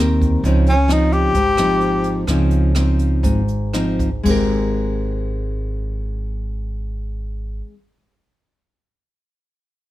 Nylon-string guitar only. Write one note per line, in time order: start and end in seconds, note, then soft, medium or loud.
0.00 0.42 D#3 medium
0.00 0.42 C4 soft
0.00 0.42 G4 soft
0.00 0.42 A#4 soft
0.45 1.33 C#3 soft
0.45 0.73 F3 soft
0.45 0.73 C4 medium
0.45 0.73 D#4 medium
0.88 1.34 F3 soft
0.88 1.34 C4 soft
0.88 1.34 D#4 medium
1.35 2.25 G#2 soft
1.58 2.24 F3 soft
1.58 2.24 C4 soft
1.58 2.24 D#4 medium
2.28 3.22 C#3 soft
2.28 2.72 F3 soft
2.28 2.72 C4 soft
2.28 2.72 D#4 soft
2.75 3.41 F3 soft
2.75 3.41 C4 soft
2.75 3.41 D#4 soft
3.23 4.23 G#2 soft
3.73 4.08 F3 soft
3.73 4.09 C4 soft
3.73 4.08 D#4 medium
4.23 7.73 G#3 soft
4.23 7.76 C4 medium
4.28 7.78 G4 medium
4.28 7.80 A#4 medium